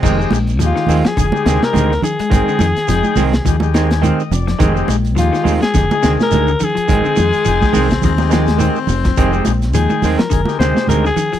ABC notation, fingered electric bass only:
X:1
M:4/4
L:1/16
Q:"Swing 16ths" 1/4=105
K:Fdor
V:1 name="Fingered electric bass" clef=bass
F,,,2 B,,,2 E,, z E,, z F,,, z D,, z D,,2 z2 | A,,, z F,, z F,,, z C,,2 E,,6 F,,,2 | F,,,2 B,,,2 E,, z E,, z F,,, z D,, z D,,2 z2 | A,,, z F,, z F,,, z C,,2 E,,6 F,,,2 |
F,,,2 B,,,2 E,, z E,, z F,,, z D,, z D,,2 z2 |]